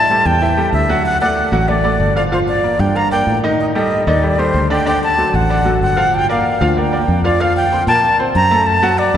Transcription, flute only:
0, 0, Header, 1, 2, 480
1, 0, Start_track
1, 0, Key_signature, -2, "minor"
1, 0, Tempo, 317628
1, 1585, Time_signature, 4, 2, 24, 8
1, 13861, End_track
2, 0, Start_track
2, 0, Title_t, "Flute"
2, 0, Program_c, 0, 73
2, 0, Note_on_c, 0, 81, 98
2, 395, Note_on_c, 0, 79, 94
2, 417, Note_off_c, 0, 81, 0
2, 1100, Note_off_c, 0, 79, 0
2, 1109, Note_on_c, 0, 76, 91
2, 1554, Note_off_c, 0, 76, 0
2, 1595, Note_on_c, 0, 78, 97
2, 1814, Note_off_c, 0, 78, 0
2, 1827, Note_on_c, 0, 78, 88
2, 2544, Note_on_c, 0, 74, 85
2, 2567, Note_off_c, 0, 78, 0
2, 3265, Note_off_c, 0, 74, 0
2, 3272, Note_on_c, 0, 74, 76
2, 3362, Note_off_c, 0, 74, 0
2, 3519, Note_on_c, 0, 72, 79
2, 3610, Note_off_c, 0, 72, 0
2, 3749, Note_on_c, 0, 74, 86
2, 4229, Note_on_c, 0, 79, 83
2, 4252, Note_off_c, 0, 74, 0
2, 4476, Note_on_c, 0, 82, 91
2, 4498, Note_off_c, 0, 79, 0
2, 4699, Note_off_c, 0, 82, 0
2, 4708, Note_on_c, 0, 79, 89
2, 5111, Note_off_c, 0, 79, 0
2, 5440, Note_on_c, 0, 75, 81
2, 5531, Note_off_c, 0, 75, 0
2, 5681, Note_on_c, 0, 75, 89
2, 6159, Note_on_c, 0, 74, 86
2, 6182, Note_off_c, 0, 75, 0
2, 6639, Note_on_c, 0, 72, 83
2, 6661, Note_off_c, 0, 74, 0
2, 7113, Note_off_c, 0, 72, 0
2, 7121, Note_on_c, 0, 79, 89
2, 7338, Note_off_c, 0, 79, 0
2, 7369, Note_on_c, 0, 79, 95
2, 7582, Note_off_c, 0, 79, 0
2, 7608, Note_on_c, 0, 81, 94
2, 8084, Note_on_c, 0, 78, 90
2, 8107, Note_off_c, 0, 81, 0
2, 8792, Note_off_c, 0, 78, 0
2, 8801, Note_on_c, 0, 78, 87
2, 9283, Note_on_c, 0, 79, 98
2, 9306, Note_off_c, 0, 78, 0
2, 9515, Note_off_c, 0, 79, 0
2, 9536, Note_on_c, 0, 77, 77
2, 10256, Note_on_c, 0, 79, 76
2, 10278, Note_off_c, 0, 77, 0
2, 10940, Note_off_c, 0, 79, 0
2, 10949, Note_on_c, 0, 74, 84
2, 11193, Note_on_c, 0, 77, 94
2, 11216, Note_off_c, 0, 74, 0
2, 11425, Note_off_c, 0, 77, 0
2, 11434, Note_on_c, 0, 79, 93
2, 11875, Note_off_c, 0, 79, 0
2, 11904, Note_on_c, 0, 81, 93
2, 12349, Note_off_c, 0, 81, 0
2, 12626, Note_on_c, 0, 82, 101
2, 13098, Note_on_c, 0, 81, 104
2, 13121, Note_off_c, 0, 82, 0
2, 13575, Note_on_c, 0, 74, 89
2, 13597, Note_off_c, 0, 81, 0
2, 13861, Note_off_c, 0, 74, 0
2, 13861, End_track
0, 0, End_of_file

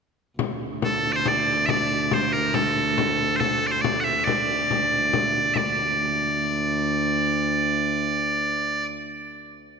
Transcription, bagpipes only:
0, 0, Header, 1, 2, 480
1, 0, Start_track
1, 0, Tempo, 431965
1, 427, Time_signature, 3, 2, 24, 8
1, 5704, Tempo, 421053
1, 11022, End_track
2, 0, Start_track
2, 0, Title_t, "Bagpipes"
2, 0, Program_c, 0, 109
2, 935, Note_on_c, 0, 69, 71
2, 1247, Note_off_c, 0, 69, 0
2, 1247, Note_on_c, 0, 74, 84
2, 1286, Note_off_c, 0, 74, 0
2, 1286, Note_on_c, 0, 72, 84
2, 1422, Note_off_c, 0, 72, 0
2, 1422, Note_on_c, 0, 74, 89
2, 1847, Note_off_c, 0, 74, 0
2, 1848, Note_on_c, 0, 76, 92
2, 1891, Note_off_c, 0, 76, 0
2, 1891, Note_on_c, 0, 74, 92
2, 2371, Note_off_c, 0, 74, 0
2, 2371, Note_on_c, 0, 72, 70
2, 2590, Note_off_c, 0, 72, 0
2, 2590, Note_on_c, 0, 70, 77
2, 2824, Note_off_c, 0, 70, 0
2, 2824, Note_on_c, 0, 69, 69
2, 3736, Note_off_c, 0, 69, 0
2, 3736, Note_on_c, 0, 72, 71
2, 3779, Note_off_c, 0, 72, 0
2, 3779, Note_on_c, 0, 69, 71
2, 4076, Note_off_c, 0, 69, 0
2, 4076, Note_on_c, 0, 74, 78
2, 4125, Note_off_c, 0, 74, 0
2, 4125, Note_on_c, 0, 72, 78
2, 4235, Note_off_c, 0, 72, 0
2, 4235, Note_on_c, 0, 74, 86
2, 4448, Note_off_c, 0, 74, 0
2, 4448, Note_on_c, 0, 78, 82
2, 4487, Note_off_c, 0, 78, 0
2, 4487, Note_on_c, 0, 76, 82
2, 4715, Note_off_c, 0, 76, 0
2, 4715, Note_on_c, 0, 74, 84
2, 6171, Note_off_c, 0, 74, 0
2, 6171, Note_on_c, 0, 76, 67
2, 6210, Note_off_c, 0, 76, 0
2, 6210, Note_on_c, 0, 74, 67
2, 9954, Note_off_c, 0, 74, 0
2, 11022, End_track
0, 0, End_of_file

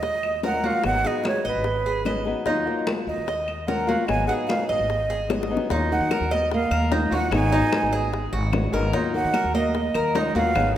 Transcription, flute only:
0, 0, Header, 1, 2, 480
1, 0, Start_track
1, 0, Key_signature, -6, "minor"
1, 0, Tempo, 404858
1, 997, Time_signature, 4, 2, 24, 8
1, 12775, End_track
2, 0, Start_track
2, 0, Title_t, "Flute"
2, 0, Program_c, 0, 73
2, 0, Note_on_c, 0, 75, 107
2, 476, Note_off_c, 0, 75, 0
2, 543, Note_on_c, 0, 78, 104
2, 782, Note_on_c, 0, 77, 93
2, 800, Note_off_c, 0, 78, 0
2, 1010, Note_off_c, 0, 77, 0
2, 1022, Note_on_c, 0, 78, 114
2, 1266, Note_on_c, 0, 75, 93
2, 1284, Note_off_c, 0, 78, 0
2, 1493, Note_off_c, 0, 75, 0
2, 1511, Note_on_c, 0, 73, 87
2, 1720, Note_off_c, 0, 73, 0
2, 1752, Note_on_c, 0, 71, 77
2, 2650, Note_off_c, 0, 71, 0
2, 3658, Note_on_c, 0, 75, 88
2, 4355, Note_on_c, 0, 78, 93
2, 4373, Note_off_c, 0, 75, 0
2, 4599, Note_on_c, 0, 77, 87
2, 4617, Note_off_c, 0, 78, 0
2, 4824, Note_off_c, 0, 77, 0
2, 4831, Note_on_c, 0, 80, 112
2, 5060, Note_off_c, 0, 80, 0
2, 5064, Note_on_c, 0, 78, 91
2, 5136, Note_off_c, 0, 78, 0
2, 5303, Note_on_c, 0, 77, 88
2, 5535, Note_off_c, 0, 77, 0
2, 5549, Note_on_c, 0, 75, 89
2, 6468, Note_off_c, 0, 75, 0
2, 7020, Note_on_c, 0, 78, 91
2, 7499, Note_on_c, 0, 75, 88
2, 7517, Note_off_c, 0, 78, 0
2, 7730, Note_off_c, 0, 75, 0
2, 7751, Note_on_c, 0, 77, 97
2, 8183, Note_off_c, 0, 77, 0
2, 8474, Note_on_c, 0, 78, 97
2, 8681, Note_off_c, 0, 78, 0
2, 8716, Note_on_c, 0, 80, 113
2, 9609, Note_off_c, 0, 80, 0
2, 10855, Note_on_c, 0, 78, 101
2, 11291, Note_off_c, 0, 78, 0
2, 11335, Note_on_c, 0, 75, 89
2, 12235, Note_off_c, 0, 75, 0
2, 12284, Note_on_c, 0, 77, 99
2, 12724, Note_off_c, 0, 77, 0
2, 12775, End_track
0, 0, End_of_file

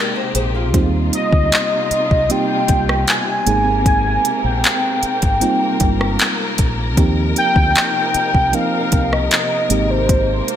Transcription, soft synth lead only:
0, 0, Header, 1, 2, 480
1, 0, Start_track
1, 0, Key_signature, -3, "major"
1, 0, Tempo, 779221
1, 456, Time_signature, 4, 2, 24, 8
1, 6506, End_track
2, 0, Start_track
2, 0, Title_t, "Soft synth lead"
2, 0, Program_c, 0, 80
2, 705, Note_on_c, 0, 75, 104
2, 1424, Note_on_c, 0, 79, 124
2, 1433, Note_off_c, 0, 75, 0
2, 1905, Note_on_c, 0, 80, 112
2, 1914, Note_off_c, 0, 79, 0
2, 2381, Note_off_c, 0, 80, 0
2, 2383, Note_on_c, 0, 80, 110
2, 2715, Note_off_c, 0, 80, 0
2, 2743, Note_on_c, 0, 79, 106
2, 4035, Note_off_c, 0, 79, 0
2, 4546, Note_on_c, 0, 79, 127
2, 5265, Note_on_c, 0, 77, 119
2, 5274, Note_off_c, 0, 79, 0
2, 5624, Note_on_c, 0, 75, 97
2, 5633, Note_off_c, 0, 77, 0
2, 5740, Note_off_c, 0, 75, 0
2, 5744, Note_on_c, 0, 75, 96
2, 6102, Note_on_c, 0, 72, 95
2, 6111, Note_off_c, 0, 75, 0
2, 6506, Note_off_c, 0, 72, 0
2, 6506, End_track
0, 0, End_of_file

